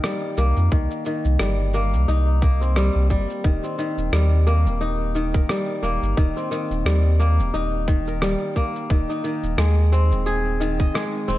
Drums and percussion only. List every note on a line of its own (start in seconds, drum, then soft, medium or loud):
0.04 cross-stick medium
0.04 shaker soft
0.38 shaker medium
0.57 shaker soft
0.72 kick loud
0.72 shaker soft
0.91 shaker soft
1.06 shaker medium
1.25 shaker soft
1.39 cross-stick loud
1.39 shaker soft
1.74 shaker medium
1.93 shaker soft
2.09 shaker soft
2.42 kick loud
2.42 shaker medium
2.62 shaker soft
2.76 cross-stick medium
2.76 shaker soft
3.10 kick medium
3.10 shaker medium
3.30 shaker soft
3.44 kick loud
3.44 shaker soft
3.64 shaker soft
3.79 shaker medium
3.98 shaker soft
4.13 cross-stick loud
4.13 shaker soft
4.47 shaker medium
4.67 shaker soft
4.81 shaker soft
5.15 shaker medium
5.34 kick loud
5.34 shaker soft
5.49 cross-stick medium
5.49 shaker soft
5.84 shaker medium
6.03 shaker soft
6.17 kick loud
6.17 shaker soft
6.38 shaker soft
6.52 shaker medium
6.71 shaker soft
6.86 cross-stick medium
6.86 shaker soft
7.20 shaker medium
7.40 shaker soft
7.55 shaker soft
7.88 kick loud
7.88 shaker medium
8.08 shaker soft
8.22 cross-stick medium
8.22 shaker soft
8.56 kick medium
8.56 shaker medium
8.76 shaker soft
8.90 kick loud
8.90 shaker soft
9.10 shaker soft
9.24 shaker medium
9.44 shaker soft
9.58 cross-stick loud
9.58 shaker soft
9.92 shaker medium
10.12 shaker soft
10.27 shaker soft
10.61 shaker medium
10.80 kick medium
10.80 shaker soft
10.95 cross-stick medium
10.95 shaker soft
11.30 shaker medium